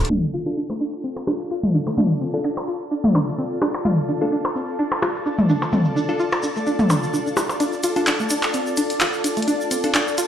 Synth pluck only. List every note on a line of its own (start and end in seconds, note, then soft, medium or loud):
0.10 0.14 D4 loud
0.34 0.40 F4 loud
0.57 0.59 D4 medium
0.70 0.73 A3 medium
0.80 0.85 D4 medium
1.04 1.10 C4 medium
1.27 1.31 D4 loud
1.51 1.57 F4 loud
1.74 1.77 D4 medium
1.87 1.90 A3 medium
1.98 2.02 D4 loud
2.21 2.27 C4 medium
2.44 2.49 D4 loud
2.68 2.74 F4 medium
2.91 2.94 D4 medium
3.04 3.08 A3 medium
3.15 3.19 D4 loud
3.38 3.44 C4 medium
3.62 3.66 D4 loud
3.85 3.91 F4 loud
4.09 4.11 D4 medium
4.21 4.25 A3 medium
4.32 4.36 D4 loud
4.56 4.62 C4 medium
4.79 4.83 D4 loud
5.02 5.09 F4 loud
5.26 5.28 D4 medium
5.39 5.42 A3 medium
5.49 5.53 D4 loud
5.73 5.79 C4 medium
5.96 6.00 D4 loud
6.20 6.26 F4 loud
6.43 6.45 D4 medium
6.56 6.59 A3 medium
6.66 6.71 D4 loud
6.90 6.96 D4 medium
7.13 7.17 D4 medium
7.26 7.28 D4 medium
7.37 7.41 E4 medium
7.60 7.64 D4 loud
7.84 7.90 F4 loud
8.07 8.10 D4 medium
8.20 8.23 A3 medium
8.31 8.35 D4 medium
8.54 8.60 C4 medium
8.77 8.82 D4 loud
9.01 9.07 F4 loud
9.24 9.27 D4 medium
9.37 9.40 A3 medium
9.48 9.52 D4 loud
9.71 9.77 C4 medium
9.94 9.99 D4 loud
10.18 10.24 F4 loud